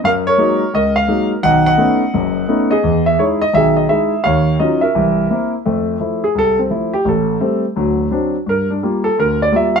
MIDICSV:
0, 0, Header, 1, 2, 480
1, 0, Start_track
1, 0, Tempo, 351288
1, 44, Time_signature, 4, 2, 24, 8
1, 13391, End_track
2, 0, Start_track
2, 0, Title_t, "Grand piano"
2, 0, Program_c, 0, 0
2, 52, Note_on_c, 0, 42, 68
2, 68, Note_on_c, 0, 77, 97
2, 84, Note_on_c, 0, 70, 67
2, 136, Note_off_c, 0, 77, 0
2, 368, Note_on_c, 0, 73, 100
2, 370, Note_off_c, 0, 70, 0
2, 390, Note_on_c, 0, 70, 64
2, 459, Note_off_c, 0, 42, 0
2, 517, Note_on_c, 0, 54, 57
2, 523, Note_on_c, 0, 56, 44
2, 525, Note_on_c, 0, 58, 44
2, 532, Note_on_c, 0, 63, 60
2, 834, Note_off_c, 0, 54, 0
2, 837, Note_off_c, 0, 56, 0
2, 838, Note_off_c, 0, 58, 0
2, 842, Note_off_c, 0, 63, 0
2, 1002, Note_on_c, 0, 37, 57
2, 1012, Note_off_c, 0, 70, 0
2, 1020, Note_on_c, 0, 75, 93
2, 1032, Note_off_c, 0, 73, 0
2, 1032, Note_on_c, 0, 70, 62
2, 1309, Note_on_c, 0, 77, 92
2, 1316, Note_off_c, 0, 75, 0
2, 1412, Note_off_c, 0, 37, 0
2, 1473, Note_on_c, 0, 54, 52
2, 1479, Note_on_c, 0, 58, 46
2, 1481, Note_on_c, 0, 56, 49
2, 1483, Note_on_c, 0, 63, 57
2, 1748, Note_off_c, 0, 77, 0
2, 1791, Note_off_c, 0, 54, 0
2, 1794, Note_off_c, 0, 58, 0
2, 1795, Note_off_c, 0, 56, 0
2, 1795, Note_off_c, 0, 63, 0
2, 1918, Note_off_c, 0, 70, 0
2, 1954, Note_on_c, 0, 51, 61
2, 1956, Note_on_c, 0, 35, 68
2, 1958, Note_on_c, 0, 78, 106
2, 1977, Note_on_c, 0, 75, 69
2, 2254, Note_off_c, 0, 78, 0
2, 2273, Note_off_c, 0, 75, 0
2, 2274, Note_on_c, 0, 78, 102
2, 2294, Note_on_c, 0, 75, 68
2, 2366, Note_off_c, 0, 51, 0
2, 2367, Note_off_c, 0, 35, 0
2, 2427, Note_on_c, 0, 57, 53
2, 2428, Note_on_c, 0, 59, 50
2, 2440, Note_on_c, 0, 61, 46
2, 2441, Note_on_c, 0, 63, 61
2, 2747, Note_off_c, 0, 57, 0
2, 2747, Note_off_c, 0, 59, 0
2, 2753, Note_off_c, 0, 61, 0
2, 2754, Note_off_c, 0, 63, 0
2, 2918, Note_on_c, 0, 42, 66
2, 2924, Note_on_c, 0, 30, 61
2, 3328, Note_off_c, 0, 42, 0
2, 3331, Note_off_c, 0, 30, 0
2, 3390, Note_on_c, 0, 57, 54
2, 3391, Note_on_c, 0, 59, 49
2, 3395, Note_on_c, 0, 61, 50
2, 3404, Note_on_c, 0, 63, 61
2, 3656, Note_off_c, 0, 75, 0
2, 3699, Note_on_c, 0, 75, 84
2, 3707, Note_off_c, 0, 57, 0
2, 3708, Note_off_c, 0, 59, 0
2, 3710, Note_off_c, 0, 61, 0
2, 3714, Note_off_c, 0, 63, 0
2, 3716, Note_on_c, 0, 68, 72
2, 3744, Note_off_c, 0, 78, 0
2, 3874, Note_on_c, 0, 40, 65
2, 4141, Note_off_c, 0, 75, 0
2, 4185, Note_on_c, 0, 76, 82
2, 4285, Note_off_c, 0, 40, 0
2, 4360, Note_on_c, 0, 56, 57
2, 4361, Note_on_c, 0, 64, 60
2, 4362, Note_on_c, 0, 63, 48
2, 4362, Note_on_c, 0, 73, 79
2, 4364, Note_off_c, 0, 76, 0
2, 4430, Note_off_c, 0, 73, 0
2, 4608, Note_off_c, 0, 68, 0
2, 4667, Note_on_c, 0, 75, 96
2, 4672, Note_off_c, 0, 56, 0
2, 4673, Note_off_c, 0, 63, 0
2, 4673, Note_off_c, 0, 64, 0
2, 4828, Note_off_c, 0, 75, 0
2, 4828, Note_on_c, 0, 51, 56
2, 4830, Note_on_c, 0, 35, 62
2, 4845, Note_on_c, 0, 76, 90
2, 4874, Note_on_c, 0, 68, 68
2, 5116, Note_off_c, 0, 76, 0
2, 5147, Note_on_c, 0, 75, 71
2, 5242, Note_off_c, 0, 51, 0
2, 5243, Note_off_c, 0, 35, 0
2, 5308, Note_off_c, 0, 75, 0
2, 5317, Note_on_c, 0, 76, 80
2, 5322, Note_on_c, 0, 63, 50
2, 5323, Note_on_c, 0, 56, 55
2, 5333, Note_on_c, 0, 64, 56
2, 5634, Note_off_c, 0, 56, 0
2, 5634, Note_off_c, 0, 63, 0
2, 5639, Note_off_c, 0, 64, 0
2, 5758, Note_off_c, 0, 68, 0
2, 5790, Note_on_c, 0, 77, 92
2, 5809, Note_off_c, 0, 76, 0
2, 5810, Note_on_c, 0, 39, 68
2, 5814, Note_on_c, 0, 73, 65
2, 6214, Note_off_c, 0, 39, 0
2, 6237, Note_off_c, 0, 77, 0
2, 6276, Note_on_c, 0, 54, 48
2, 6280, Note_on_c, 0, 75, 78
2, 6285, Note_on_c, 0, 61, 49
2, 6286, Note_on_c, 0, 63, 51
2, 6293, Note_on_c, 0, 65, 56
2, 6554, Note_off_c, 0, 75, 0
2, 6576, Note_on_c, 0, 76, 75
2, 6591, Note_off_c, 0, 54, 0
2, 6593, Note_on_c, 0, 70, 57
2, 6596, Note_off_c, 0, 61, 0
2, 6596, Note_off_c, 0, 63, 0
2, 6599, Note_off_c, 0, 65, 0
2, 6709, Note_off_c, 0, 73, 0
2, 6764, Note_on_c, 0, 36, 61
2, 6767, Note_on_c, 0, 52, 63
2, 7172, Note_off_c, 0, 36, 0
2, 7174, Note_off_c, 0, 52, 0
2, 7245, Note_on_c, 0, 58, 55
2, 7251, Note_on_c, 0, 60, 45
2, 7253, Note_on_c, 0, 64, 55
2, 7481, Note_off_c, 0, 76, 0
2, 7489, Note_off_c, 0, 70, 0
2, 7556, Note_off_c, 0, 58, 0
2, 7559, Note_off_c, 0, 60, 0
2, 7560, Note_off_c, 0, 64, 0
2, 7727, Note_on_c, 0, 57, 64
2, 7733, Note_on_c, 0, 41, 58
2, 8135, Note_off_c, 0, 57, 0
2, 8138, Note_off_c, 0, 41, 0
2, 8195, Note_on_c, 0, 53, 52
2, 8200, Note_on_c, 0, 57, 43
2, 8208, Note_on_c, 0, 64, 51
2, 8512, Note_off_c, 0, 53, 0
2, 8515, Note_off_c, 0, 57, 0
2, 8519, Note_off_c, 0, 64, 0
2, 8524, Note_on_c, 0, 68, 75
2, 8678, Note_on_c, 0, 36, 53
2, 8687, Note_off_c, 0, 68, 0
2, 8724, Note_on_c, 0, 69, 97
2, 8991, Note_off_c, 0, 69, 0
2, 9004, Note_on_c, 0, 60, 63
2, 9091, Note_off_c, 0, 36, 0
2, 9156, Note_on_c, 0, 53, 53
2, 9159, Note_on_c, 0, 57, 42
2, 9166, Note_on_c, 0, 64, 55
2, 9167, Note_off_c, 0, 60, 0
2, 9474, Note_off_c, 0, 53, 0
2, 9476, Note_off_c, 0, 57, 0
2, 9476, Note_on_c, 0, 67, 84
2, 9479, Note_off_c, 0, 64, 0
2, 9636, Note_on_c, 0, 33, 61
2, 9644, Note_off_c, 0, 67, 0
2, 9682, Note_on_c, 0, 69, 67
2, 10051, Note_off_c, 0, 33, 0
2, 10117, Note_on_c, 0, 55, 50
2, 10120, Note_on_c, 0, 57, 48
2, 10123, Note_on_c, 0, 60, 59
2, 10388, Note_off_c, 0, 69, 0
2, 10436, Note_off_c, 0, 55, 0
2, 10437, Note_off_c, 0, 57, 0
2, 10439, Note_off_c, 0, 60, 0
2, 10604, Note_on_c, 0, 38, 57
2, 10610, Note_on_c, 0, 54, 63
2, 11016, Note_off_c, 0, 38, 0
2, 11020, Note_off_c, 0, 54, 0
2, 11082, Note_on_c, 0, 54, 52
2, 11084, Note_on_c, 0, 60, 55
2, 11097, Note_on_c, 0, 62, 59
2, 11399, Note_off_c, 0, 54, 0
2, 11400, Note_off_c, 0, 60, 0
2, 11407, Note_off_c, 0, 62, 0
2, 11565, Note_on_c, 0, 43, 57
2, 11603, Note_on_c, 0, 70, 78
2, 11874, Note_off_c, 0, 70, 0
2, 11893, Note_on_c, 0, 62, 55
2, 11977, Note_off_c, 0, 43, 0
2, 12055, Note_off_c, 0, 62, 0
2, 12064, Note_on_c, 0, 55, 54
2, 12068, Note_on_c, 0, 58, 47
2, 12071, Note_on_c, 0, 65, 55
2, 12353, Note_on_c, 0, 69, 85
2, 12371, Note_off_c, 0, 55, 0
2, 12373, Note_off_c, 0, 58, 0
2, 12375, Note_off_c, 0, 65, 0
2, 12525, Note_off_c, 0, 69, 0
2, 12547, Note_on_c, 0, 38, 55
2, 12565, Note_on_c, 0, 70, 89
2, 12835, Note_off_c, 0, 70, 0
2, 12876, Note_on_c, 0, 74, 82
2, 12950, Note_off_c, 0, 38, 0
2, 13006, Note_on_c, 0, 55, 48
2, 13009, Note_on_c, 0, 58, 49
2, 13015, Note_on_c, 0, 65, 61
2, 13027, Note_off_c, 0, 74, 0
2, 13065, Note_on_c, 0, 76, 80
2, 13323, Note_off_c, 0, 55, 0
2, 13324, Note_off_c, 0, 58, 0
2, 13326, Note_off_c, 0, 76, 0
2, 13327, Note_off_c, 0, 65, 0
2, 13334, Note_on_c, 0, 77, 97
2, 13391, Note_off_c, 0, 77, 0
2, 13391, End_track
0, 0, End_of_file